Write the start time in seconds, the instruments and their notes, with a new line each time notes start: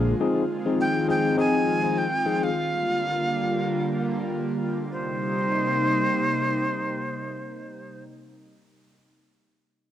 Already playing: fingered electric bass A#1, analog synth pad D3 G#3 A#3 F4, tine electric piano F3 A#3 D4 G#4
0.20 analog synth pad D#3 C4 F4, tine electric piano F3 C4 D#4 G#4
0.66 tine electric piano F3 C4 D#4 G#4
0.81 flute G5
1.08 tine electric piano F3 C4 D#4 G#4, flute G5
1.37 tine electric piano F3 C4 D#4 G#4, flute G#5
1.83 tine electric piano F3 C4 D#4 G#4
1.98 flute G5
2.26 tine electric piano F3 C4 D#4 G#4
2.44 flute F5
2.55 analog synth pad D3 G3 A#3
4.90 analog synth pad C3 G3 A#3 D#4, flute C5